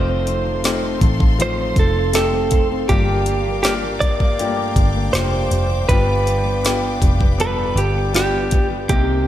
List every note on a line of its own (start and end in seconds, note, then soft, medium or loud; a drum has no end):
0.00 0.98 F1 loud
0.00 1.39 F3 medium
0.00 0.61 A3 medium
0.00 0.61 C4 medium
0.00 0.27 D#4 medium
0.00 0.61 D#4 medium
0.00 2.86 D#4 medium
0.00 0.62 F4 loud
0.00 2.86 A4 medium
0.00 0.98 C5 medium
0.00 8.85 F5 medium
0.00 2.86 C6 medium
0.08 0.45 C4 medium
0.27 1.75 D#4 medium
0.27 closed hi-hat medium
0.46 0.82 C4 medium
0.64 1.35 A3 medium
0.64 1.36 C4 medium
0.64 1.36 D#4 medium
0.64 1.36 F4 medium
0.64 1.00 A4 medium
0.64 snare loud
0.64 closed hi-hat medium
0.83 1.19 C4 medium
1.01 1.73 A1 medium
1.01 2.13 A4 medium
1.01 kick medium
1.01 closed hi-hat medium
1.20 1.56 C4 medium
1.20 kick medium
1.38 3.67 F3 medium
1.38 2.10 A3 medium
1.38 2.11 C4 medium
1.38 2.11 D#4 medium
1.38 2.11 F4 medium
1.38 1.76 C5 medium
1.38 closed hi-hat medium
1.57 1.95 C4 medium
1.76 2.85 F1 medium
1.76 2.97 D#4 medium
1.76 2.14 A4 medium
1.76 kick medium
1.76 closed hi-hat medium
1.96 2.32 C4 medium
2.13 2.85 A3 medium
2.13 2.85 C4 medium
2.13 2.86 D#4 medium
2.13 2.86 G4 medium
2.13 2.51 A4 medium
2.13 2.67 A4 medium
2.13 snare loud
2.13 closed hi-hat medium
2.33 2.70 C4 medium
2.51 2.97 A4 medium
2.51 kick medium
2.51 closed hi-hat medium
2.72 2.97 C4 medium
2.88 4.73 G1 medium
2.88 3.98 G2 medium
2.88 4.38 G2 medium
2.88 3.60 A#3 medium
2.88 3.61 D4 medium
2.88 3.61 F4 medium
2.88 3.62 G4 medium
2.88 3.61 G4 medium
2.88 5.86 A#4 medium
2.88 8.86 G5 medium
2.88 8.86 D6 medium
2.88 kick loud
2.88 closed hi-hat medium
3.08 3.45 A#3 medium
3.26 4.76 D4 medium
3.26 closed hi-hat medium
3.46 3.82 A#3 medium
3.63 4.35 A#3 medium
3.63 4.36 D4 medium
3.63 4.36 F4 medium
3.63 3.73 G4 medium
3.63 4.03 G4 medium
3.63 4.36 A#4 medium
3.63 snare loud
3.63 closed hi-hat medium
3.84 4.20 A#3 medium
4.00 5.13 G4 medium
4.00 5.13 D5 loud
4.00 kick medium
4.00 closed hi-hat medium
4.20 4.58 A#3 medium
4.20 kick medium
4.38 5.88 G2 medium
4.38 4.45 A3 medium
4.38 5.10 D4 medium
4.38 5.10 F4 medium
4.38 5.11 G4 medium
4.38 closed hi-hat medium
4.45 5.12 A#3 medium
4.59 4.94 A#3 medium
4.76 5.11 G1 loud
4.76 6.27 D4 medium
4.76 kick medium
4.76 closed hi-hat medium
4.95 5.32 A#3 medium
5.13 5.49 F1 medium
5.13 5.85 A#3 medium
5.13 5.86 D4 medium
5.13 5.86 F4 medium
5.13 5.51 G4 medium
5.13 5.86 G4 medium
5.13 5.85 C5 medium
5.13 snare loud
5.13 closed hi-hat loud
5.33 5.69 A#3 medium
5.51 5.86 F1 medium
5.51 6.64 G4 medium
5.51 closed hi-hat medium
5.70 5.97 A#3 medium
5.89 6.98 G1 loud
5.89 7.38 G2 medium
5.89 6.98 G2 medium
5.89 6.61 B3 medium
5.89 6.61 D4 medium
5.89 6.61 F4 medium
5.89 6.61 G4 loud
5.89 6.98 B4 medium
5.89 8.86 B4 medium
5.89 kick loud
5.89 closed hi-hat medium
6.08 6.44 B3 medium
6.27 7.75 D4 medium
6.27 closed hi-hat medium
6.46 6.82 B3 medium
6.64 7.35 B3 medium
6.64 7.36 D4 medium
6.64 7.36 F4 medium
6.64 7.01 G4 medium
6.64 7.36 G4 medium
6.64 snare loud
6.64 closed hi-hat medium
6.83 7.18 B3 medium
7.01 7.73 F1 medium
7.01 8.14 G4 medium
7.01 kick medium
7.01 closed hi-hat medium
7.20 7.56 B3 medium
7.20 kick medium
7.38 8.97 G2 medium
7.38 8.10 B3 medium
7.38 8.10 D4 medium
7.38 8.11 F4 medium
7.38 8.11 A4 medium
7.38 7.79 B4 medium
7.38 closed hi-hat medium
7.57 7.94 B3 medium
7.75 8.85 G1 medium
7.75 8.97 D4 medium
7.75 8.12 G4 medium
7.75 closed hi-hat medium
7.95 8.32 B3 medium
8.14 8.85 B3 medium
8.14 8.86 D4 medium
8.14 8.86 F4 medium
8.14 8.50 G4 medium
8.14 8.67 G4 medium
8.14 8.86 G4 medium
8.14 snare loud
8.14 closed hi-hat loud
8.33 8.69 B3 medium
8.51 9.27 G4 medium
8.51 kick medium
8.51 closed hi-hat medium
8.70 8.97 B3 medium
8.89 9.27 C2 loud
8.89 9.27 C3 medium
8.89 9.27 A#3 medium
8.89 9.27 C4 medium
8.89 9.27 D#4 medium
8.89 9.27 G4 medium
8.89 9.27 C5 medium
8.89 9.27 G5 medium
8.89 kick loud
8.89 closed hi-hat medium
9.08 9.27 A#3 medium